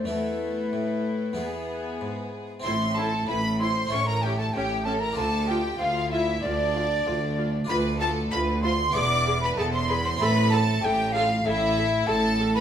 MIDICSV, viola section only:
0, 0, Header, 1, 2, 480
1, 0, Start_track
1, 0, Key_signature, 0, "minor"
1, 0, Tempo, 638298
1, 64, Time_signature, 4, 2, 24, 8
1, 2943, Tempo, 627615
1, 9590, End_track
2, 0, Start_track
2, 0, Title_t, "Viola section"
2, 0, Program_c, 0, 48
2, 70, Note_on_c, 0, 57, 48
2, 1016, Note_off_c, 0, 57, 0
2, 1037, Note_on_c, 0, 59, 40
2, 1845, Note_off_c, 0, 59, 0
2, 1997, Note_on_c, 0, 64, 61
2, 2057, Note_off_c, 0, 64, 0
2, 2233, Note_on_c, 0, 64, 66
2, 2293, Note_off_c, 0, 64, 0
2, 2469, Note_on_c, 0, 64, 57
2, 2529, Note_off_c, 0, 64, 0
2, 2708, Note_on_c, 0, 64, 61
2, 2768, Note_off_c, 0, 64, 0
2, 2950, Note_on_c, 0, 61, 63
2, 3011, Note_off_c, 0, 61, 0
2, 3193, Note_on_c, 0, 61, 55
2, 3254, Note_off_c, 0, 61, 0
2, 3434, Note_on_c, 0, 61, 63
2, 3496, Note_off_c, 0, 61, 0
2, 3671, Note_on_c, 0, 61, 57
2, 3732, Note_off_c, 0, 61, 0
2, 3910, Note_on_c, 0, 65, 62
2, 3971, Note_off_c, 0, 65, 0
2, 4147, Note_on_c, 0, 65, 60
2, 4208, Note_off_c, 0, 65, 0
2, 4393, Note_on_c, 0, 65, 62
2, 4454, Note_off_c, 0, 65, 0
2, 4630, Note_on_c, 0, 65, 63
2, 4691, Note_off_c, 0, 65, 0
2, 4869, Note_on_c, 0, 65, 61
2, 4931, Note_off_c, 0, 65, 0
2, 5118, Note_on_c, 0, 65, 53
2, 5179, Note_off_c, 0, 65, 0
2, 5355, Note_on_c, 0, 65, 68
2, 5417, Note_off_c, 0, 65, 0
2, 5597, Note_on_c, 0, 65, 65
2, 5658, Note_off_c, 0, 65, 0
2, 5834, Note_on_c, 0, 65, 73
2, 5895, Note_off_c, 0, 65, 0
2, 6070, Note_on_c, 0, 65, 67
2, 6131, Note_off_c, 0, 65, 0
2, 6315, Note_on_c, 0, 65, 57
2, 6377, Note_off_c, 0, 65, 0
2, 6554, Note_on_c, 0, 65, 70
2, 6616, Note_off_c, 0, 65, 0
2, 6795, Note_on_c, 0, 68, 70
2, 6857, Note_off_c, 0, 68, 0
2, 7035, Note_on_c, 0, 68, 60
2, 7096, Note_off_c, 0, 68, 0
2, 7275, Note_on_c, 0, 68, 68
2, 7337, Note_off_c, 0, 68, 0
2, 7519, Note_on_c, 0, 68, 64
2, 7580, Note_off_c, 0, 68, 0
2, 7759, Note_on_c, 0, 69, 80
2, 7820, Note_off_c, 0, 69, 0
2, 8000, Note_on_c, 0, 69, 69
2, 8061, Note_off_c, 0, 69, 0
2, 8236, Note_on_c, 0, 69, 68
2, 8298, Note_off_c, 0, 69, 0
2, 8473, Note_on_c, 0, 69, 71
2, 8534, Note_off_c, 0, 69, 0
2, 8713, Note_on_c, 0, 69, 71
2, 8774, Note_off_c, 0, 69, 0
2, 8956, Note_on_c, 0, 69, 60
2, 9017, Note_off_c, 0, 69, 0
2, 9190, Note_on_c, 0, 69, 73
2, 9251, Note_off_c, 0, 69, 0
2, 9427, Note_on_c, 0, 69, 70
2, 9488, Note_off_c, 0, 69, 0
2, 9590, End_track
0, 0, End_of_file